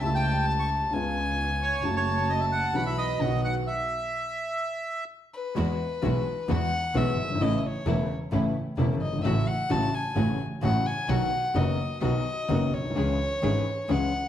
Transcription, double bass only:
0.02 0.89 C#2 medium
0.93 1.80 C#2 medium
1.84 2.71 F#1 medium
2.75 3.19 B1 medium
3.21 3.66 B1 medium
5.57 5.76 E2 medium
6.03 6.22 B1 medium
6.49 6.68 E2 medium
6.95 7.14 B1 medium
7.18 7.40 G1 medium
7.40 7.60 A1 loud
7.87 8.06 E1 medium
8.32 8.51 A1 medium
8.78 8.97 E1 loud
9.01 9.23 G1 medium
9.24 9.43 A1 loud
9.70 9.89 A1 loud
10.16 10.35 A1 medium
10.62 10.82 A1 medium
11.09 11.28 B1 medium
11.55 11.74 F#1 medium
12.02 12.21 B1 medium
12.50 12.69 F#1 medium
12.73 12.96 B1 soft
12.96 13.16 C#2 medium
13.43 13.62 G#1 medium
13.89 14.08 C#2 medium

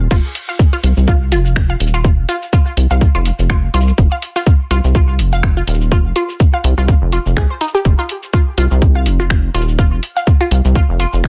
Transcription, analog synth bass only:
0.00 0.08 D#1 loud
0.11 0.21 F1 loud
0.84 0.93 C2 medium
0.97 1.34 C2 medium
1.32 1.76 F1 loud
1.80 2.20 D#1 loud
2.18 2.26 F1 medium
2.77 2.87 C2 medium
2.91 3.07 C2 medium
3.15 3.31 F1 loud
3.39 3.69 F1 medium
3.74 3.92 C2 medium
3.98 4.08 F1 loud
4.71 4.80 C2 medium
4.84 5.21 C2 medium
5.19 5.63 F1 loud
5.68 6.07 D#1 loud
6.05 6.13 F1 medium
6.64 6.74 C2 medium
6.78 6.94 C2 medium
7.02 7.18 F1 loud
7.26 7.36 F1 medium
7.37 7.47 C2 medium
7.85 7.95 F1 loud
8.58 8.67 C2 medium
8.71 9.08 C2 medium
9.06 9.50 F1 loud
9.54 9.94 D#1 loud
9.92 10.00 F1 medium
10.51 10.61 C2 medium
10.65 10.81 C2 medium
10.89 11.06 F1 loud
11.13 11.28 F1 medium

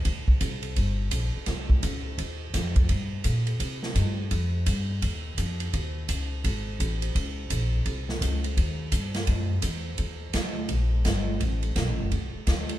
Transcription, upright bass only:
0.05 0.40 D2 medium
0.41 0.75 C2 medium
0.76 1.11 G1 medium
1.12 1.33 A#1 medium
1.36 muted upright bass stroke soft
1.47 1.82 C2 medium
1.83 2.17 C#2 medium
2.18 2.53 D#2 medium
2.54 2.88 F2 medium
2.89 3.24 G2 medium
3.25 3.59 A#2 medium
3.60 3.94 C3 medium
3.95 4.30 G2 medium
4.31 4.66 F2 medium
4.67 5.01 G2 medium
5.02 5.36 D#2 medium
5.38 5.72 F2 medium
5.74 6.08 D#2 medium
6.09 6.43 C#2 medium
6.44 6.79 G#1 medium
6.80 7.14 A1 medium
7.15 7.49 C#2 medium
7.50 7.85 A#1 loud
7.86 8.20 C2 medium
8.21 8.56 C#2 medium
8.57 8.91 D#2 medium
8.92 9.27 G2 medium
9.28 9.62 F#2 medium
9.63 9.98 E2 medium
9.99 10.33 D#2 medium
10.34 10.68 D2 medium
10.69 11.04 A#1 medium
11.05 11.40 G1 medium
11.40 11.75 A1 medium
11.76 11.88 B1 medium
11.88 12.00 A1 medium
12.00 12.11 F#1 medium
12.11 12.32 C2 medium
12.34 muted upright bass stroke soft
12.47 12.79 D2 medium

